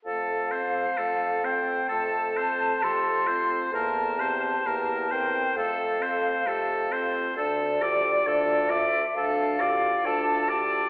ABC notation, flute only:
X:1
M:4/4
L:1/8
Q:1/4=66
K:F
V:1 name="Flute"
f3 g a2 c'2 | a3 g f3 z | d3 e f2 a2 |]